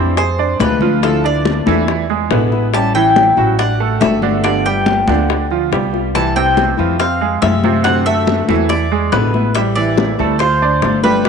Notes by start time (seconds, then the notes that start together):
Already playing: F2 E3 G3 C4 D4 E4 C5 D5
0.17 G#4 C5 G#5, muted nylon-string guitar stroke, high bongo, high conga
0.38 D4 D5, high conga
0.60 D2 C3 F3 G#3 D4 F4 B4, high bongo, low bongo, high conga
0.81 F3 G#3 D4 F4, high conga
1.02 D3 F3 A3 D4 E4 F4 A4, high bongo, high conga
1.24 D4 D5, high bongo, high conga
1.45 high bongo, high conga
1.66 E2 E3 F3 A3 D4 E4, high bongo, high conga
1.88 muted nylon-string guitar stroke, high bongo, high conga
2.10 G#3 G#4, high conga
2.30 A1 B2 D3 G#3 B3 E4 B4, high bongo, low bongo, high conga
2.52 G#3 B3 E4, high bongo
2.73 E3 G3 C#4 E4 G4 A5, high bongo, high conga
2.95 E3 E4 G5, high conga
3.16 high bongo, high conga
3.37 A1 F#3 G3 C#4 E4 F#4, high conga
3.58 D4 D5 F#5, muted nylon-string guitar stroke, high bongo, high conga
3.80 A3 A4, high conga
4.00 G1 D3 A3 C4 F#4 E5, high bongo, low bongo, high conga
4.22 D3 A3 C4 D4 F#4, high conga
4.43 D3 G3 B3 D4 F4 D5, high bongo, high conga
4.65 G3 G4 G5, high bongo, high conga
4.86 high bongo, high conga
5.08 D2 D3 B3 D4 F4, high bongo, high conga
5.29 muted nylon-string guitar stroke, high bongo, high conga
5.50 F3 F4, high conga
5.71 C2 G3 B3 F4 G4, high bongo, low bongo, high conga
5.92 B3 F4, high bongo
6.14 C3 E3 G3 C4 E4 A5, high bongo, high conga
6.36 C3 C4 G5, high conga
6.57 high bongo, high conga
6.78 F2 E3 F3 G3 C4 E4 F4, high conga
6.99 C4 C5 F5, muted nylon-string guitar stroke, high bongo, high conga
7.21 G#3 G#4, high conga
7.42 F#2 C3 F3 G#3 C4 F4 E5, high bongo, low bongo, high conga
7.63 C3 G#3 C4 F4, high conga
7.84 C3 D3 A3 C4 F#4 F#5, high bongo, high conga
8.06 A3 A4 E5, high bongo, high conga
8.27 high bongo, high conga
8.48 E2 E3 A3 C4 E4 F#4, high bongo, high conga
8.69 D5, muted nylon-string guitar stroke, high bongo, high conga
8.91 G#3 G#4, high conga
9.12 A1 B2 D3 G#3 B3 E4 B4, high bongo, low bongo, high conga
9.34 G#3 B3 E4, high bongo, high conga
9.55 E3 G3 C4 E4 G4 E5, high bongo, high conga
9.76 E3 E4 D5, high conga
9.98 high bongo, high conga
10.19 D2 G3 A3 C4 E4 A4, high conga
10.39 F4 C5 F5, muted nylon-string guitar stroke, high bongo, high conga
10.62 D4 D5, high conga
10.82 G1 D3 A3 D4 F4, high bongo, low bongo, high conga
11.03 G3 A3 D4 F4 G4 B4, high conga
11.24 B2 D3 G3 B3, high bongo, high conga